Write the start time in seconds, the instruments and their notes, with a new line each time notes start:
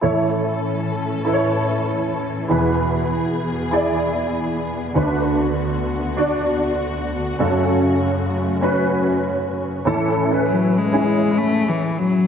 0.01 grand piano A2 E3 E4 A4 C#5, string section A2 E3 C#4 A4
1.25 grand piano E4 A4 B4
1.33 grand piano C#5
2.48 string section E2 B3 G#4, grand piano E2 B2 E4 G#4 B4
3.71 grand piano E4 G#4 D5
4.94 string section D2 D3 F#4, grand piano D2 D3 C#4 F#4 B4
5.01 grand piano D4
6.16 grand piano D4 F#4 D5
7.39 grand piano F#2 C#3 C#4 F#4 A4, string section F#2 C#3 A3
8.61 grand piano C#4 F#4 B4
9.85 grand piano A2 E3 C#4 E4 A4
10.31 grand piano C#4 E4 B4
10.47 cello F#3
10.77 cello G#3
10.92 grand piano C#4 E4 G#4
11.38 cello A3
11.69 cello E3
11.99 cello F#3